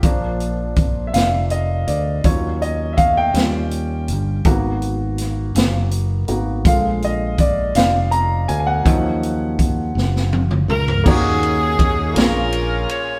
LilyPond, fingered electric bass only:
\new Staff \with { instrumentName = "Fingered electric bass" } { \clef bass \time 6/8 \key ees \minor \tempo 4. = 54 bes,,4. f,,4 d,8 | ees,4. ees,4 g,,8 | aes,,4. ges,,4 aes,,8 | bes,,4. f,,4 d,8 |
ees,4. ges,,4 des,8 | ees,4 ees,8 bes,,4 r8 | }